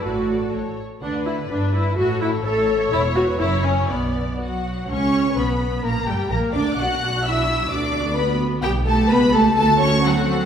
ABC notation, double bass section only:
X:1
M:2/4
L:1/8
Q:1/4=127
K:Amix
V:1 name="Double bass section" clef=bass
A,,,2 A,,, z | D,,2 G,,,2 | A,,,2 A,,,2 | [K:Bm] E,,,2 F,,,2 |
B,,,3 z | C,,2 B,,,2 | _B,,, G,,, B,,, D,, | B,,,4 |
D,,4 | [K:D] B,,,2 C,,2 | D,,4 |]